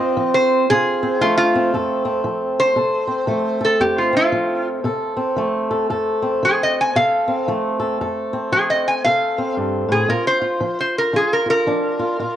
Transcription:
Already playing: F2 C4 F4 D#5
0.17 F3
0.34 C5
0.70 C3 F4 G#4
1.03 C4
1.21 F3 A3 F4
1.37 F4
1.55 C4
1.73 F2 A4
2.05 C4
2.24 F3
2.59 C5
2.76 C3 A4
3.07 C4
3.27 F3 A3
3.60 A4
3.65 A4
3.80 F2 C4 G4
3.98 F4
4.13 C4 F4
4.32 F3
4.84 C3 A4
5.17 C4
5.36 F3 A3
5.71 A4
5.90 F2 A4
6.22 C4
6.43 F3 G#4
6.63 D#5
6.81 G#5
6.96 C3 A4 F5
7.28 C4
7.48 F3 A3
7.80 A4
8.01 F2 A4
8.33 C4
8.52 F3 G#4
8.70 D#5
8.88 G#5
9.04 C3 A4 F5
9.38 C4
9.57 G2
9.89 A2 G#4
10.08 A#2 F4 A#4
10.27 C5
10.42 F4
10.61 F3
10.81 C5
10.98 A#4
11.13 F3 F4 G#4
11.33 A#4
11.46 F4
11.50 A#4
11.67 F3 D4
11.99 F4
12.19 A#2 F4

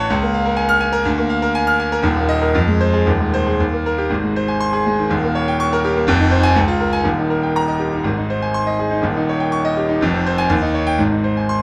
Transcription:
Already playing: A1 A2 C#4 C#5 F#5 A5 F#6
0.10 C#2
0.22 A#3
0.34 F5
0.45 A#4
0.57 G#5
0.69 F6
0.81 G#5
0.93 A#4
1.05 D2
1.18 A#3
1.30 F5
1.42 A#4
1.55 G#5
1.67 F6
1.80 G#5
1.92 A#4
2.02 D#1 D#2
2.16 A#3
2.29 D#5
2.42 A#4
2.55 F2
2.68 G#3
2.81 C5
2.94 G#4
3.06 D#1 D#2
3.21 G#3
3.34 C5
3.46 G#4
3.60 D#2
3.73 A#3
3.86 A#4
3.98 G4
4.10 G#1 G#2
4.23 G#3
4.36 C5
4.48 G#5
4.60 C6
4.73 G#4
4.86 G#3
4.99 D#3
5.09 D#1 D#2
5.24 A#3
5.35 C#5
5.48 G5
5.60 C#6
5.73 A#4
5.85 G4
5.97 A#3
6.07 F1 F2
6.20 D#4
6.31 C5
6.43 G#5
6.56 C#2
6.68 F4
6.80 A#4
6.93 G#5
7.04 D#1 D#2
7.18 D#4
7.30 A#4
7.43 G5
7.56 A#5
7.68 D#5
7.80 G4
7.92 D#4
8.04 G#1 G#2
8.18 D#4
8.30 C5
8.42 G#5
8.54 C6
8.67 D#5
8.79 G#4
8.91 D#4
9.02 D#1 D#2
9.17 D#4
9.29 C#5
9.40 G5
9.52 C#6
9.65 D#5
9.77 G4
9.89 D#4
10.01 F1 F2
10.13 C4
10.26 C5
10.38 G#5
10.50 D#2
10.62 D#4
10.74 C#5
10.87 G5
10.98 G#1 G#2
11.12 D#4
11.24 C5
11.37 G#5
11.49 C6

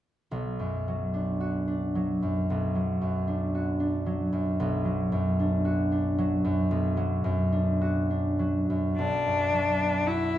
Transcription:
0.31 B1
0.59 F#2
0.88 F#3
1.14 D4
1.40 F#4
1.68 D4
1.95 F#3
2.22 F#2
2.50 B1
2.75 F#3
3.01 F#2
3.27 D4
3.55 F#4
3.80 D4
4.06 F#3
4.33 F#2
4.60 B1
4.85 F#3
5.12 F#2
5.40 D4
5.65 F#4
5.92 D4
6.18 F#3
6.44 F#2
6.71 B1
6.97 F#3
7.24 F#2
7.52 D4
7.81 F#4
8.10 D4
8.39 F#3
8.70 F#2
8.97 B1 D4
9.26 F#2
9.53 F#3
9.80 B3
10.07 E4 F#4

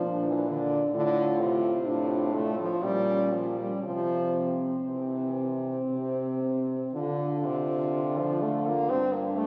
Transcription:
Already playing: F3 D4
0.03 A#2 D4
0.26 E3
0.48 D3 D4
0.93 A2 D3 F4
1.39 C3 F4
1.86 A2 D4
2.32 A3 F4
2.59 F3
2.83 A#2 G3 C#4
3.33 F3 C#4
3.58 G3
3.83 C3 F3 C4
4.35 C4
4.87 C3 E3
5.39 C4
5.90 C3
6.42 C4
6.94 D3 F4
7.45 C3
7.95 F4
8.19 F3
8.42 A3
8.66 A#3
8.89 G2 C4 D4 G4
9.12 A#3
9.36 A3

